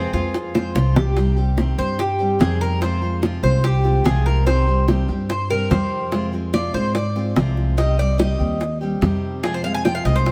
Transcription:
Already playing: C3 F3 G#3 C4 F4 G#4 C5
0.13 F2 G#3 C4 F4, high bongo
0.34 muted steel-string acoustic guitar stroke, high bongo
0.54 G#3 C4 F4 C5, high bongo
0.75 C2 C3 F3 G#3 C4 F4, high bongo
0.96 G4, low bongo
1.16 C3 D#3 G3 C4 G4, high bongo
1.37 G3 C4 G4
1.57 C3 D#3 G3 C4 G4, high bongo
1.78 G2 G3 C4 G4 C5
1.99 G4, muted steel-string acoustic guitar stroke, high bongo
2.19 G3 C4 G4
2.39 F2 C3 D#3 G3 C4 G4 G#4, high bongo, low bongo
2.61 A#4
2.81 C3 F3 G#3 C4 F4 C5, high bongo
3.02 G#3 C4 F4
3.22 C3 F3 G#3 C4 F4, high bongo
3.43 C2 G#3 C4 F4 C5, high bongo
3.64 G4, muted steel-string acoustic guitar stroke, high bongo
3.84 G#3 C4 F4, high bongo
4.04 C2 C3 F3 G#3 C4 F4 G#4, high bongo, low bongo
4.26 A#4, high bongo
4.46 C3 D#3 G3 C4 G4 C5, high bongo
4.67 G3 C4 G4
4.88 C3 D#3 G3 C4 G4, high bongo
5.08 G2 G3 C4 G4
5.29 C5, muted steel-string acoustic guitar stroke, high bongo
5.50 G3 C4 G4 A#4
5.70 F2 C3 D#3 G3 C4 G4 C5, high bongo, low bongo
6.11 C3 F3 G#3 C4 F4, high bongo
6.32 G#3 C4 F4
6.53 C3 F3 G#3 C4 F4 D5, high bongo
6.74 G#2 G#3 C4 F4 C5, high bongo
6.95 D5, muted steel-string acoustic guitar stroke, high bongo
7.16 G#3 C4 F4, high bongo
7.36 C2 C3 F3 G#3 C4 F4, high bongo, low bongo
7.57 high bongo
7.77 C3 D#3 G3 C4 G4 D#5, high bongo
7.98 G3 C4 G4 D5
8.18 C3 D#3 G3 C4 G4 D#5, high bongo
8.39 D#2 G3 C4 G4
8.60 muted steel-string acoustic guitar stroke, high bongo
8.81 G3 C4 G4
9.01 F2 C3 D#3 G3 C4 G4, high bongo, low bongo
9.43 C3 F3 G#3 C4 F4 G#4, high bongo
9.54 C5
9.64 G#3 C4 F4 F5
9.74 G#5
9.84 C3 F3 G#3 C4 F4 G5, high bongo
9.95 F5
10.04 C2 G#3 C4 F4 D#5, high bongo
10.16 C5
10.26 muted steel-string acoustic guitar stroke, high bongo

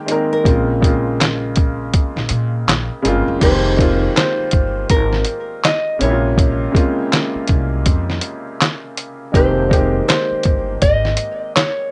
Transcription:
Already playing: D#3 G#3 A#3 C4 G#4 G5
0.06 D#3 G#3 A#3 C4, closed hi-hat
0.11 A#4
0.33 A#4
0.43 A#1 C#3 G#3 A#3 C4, kick, closed hi-hat
0.49 F4
0.81 C#3 G#3 A#3 C4, kick, closed hi-hat
0.86 F4
1.21 snare, clap, closed hi-hat
1.56 kick, closed hi-hat
1.94 kick, closed hi-hat
2.16 A#1, snare
2.29 A#2, closed hi-hat
2.68 A#1, snare, clap, closed hi-hat
3.02 G1 C#3 G#3 A#3 C4, closed hi-hat
3.08 F4
3.28 F#1
3.39 F1 D#3 G#3 A#3 C4 C5, kick, closed hi-hat, crash
3.45 G4
3.76 D#3 G#3 A#3 C4, kick
3.81 F4, closed hi-hat
4.17 C5, snare, clap, closed hi-hat
4.39 muted upright bass stroke
4.51 G1, kick, closed hi-hat
4.90 G#1 A#4, kick, closed hi-hat
5.13 snare
5.25 closed hi-hat
5.65 D#5, snare, clap, closed hi-hat
5.99 A#1 C3 C#3 G#3 A#3 C#5, closed hi-hat
6.04 E4
6.10 F4
6.38 kick, closed hi-hat
6.72 G#3 A#3 C4 C#4, kick
6.76 F4, closed hi-hat
7.13 snare, clap, closed hi-hat
7.35 muted upright bass stroke
7.48 C2, kick, closed hi-hat
7.86 F2, kick, closed hi-hat
8.10 snare
8.21 closed hi-hat
8.62 snare, clap, closed hi-hat
8.97 closed hi-hat
9.32 F1 D#3 G#3 A#3 C4 C5, kick, closed hi-hat
9.37 G4
9.68 D#3 G#3 A#3 C4, kick
9.73 G4, closed hi-hat
10.08 C5, snare, clap, closed hi-hat
10.31 muted upright bass stroke
10.43 G1, kick, closed hi-hat
10.82 G#1 D#5, kick, closed hi-hat
11.05 snare
11.17 closed hi-hat
11.56 C#5, snare, clap, closed hi-hat

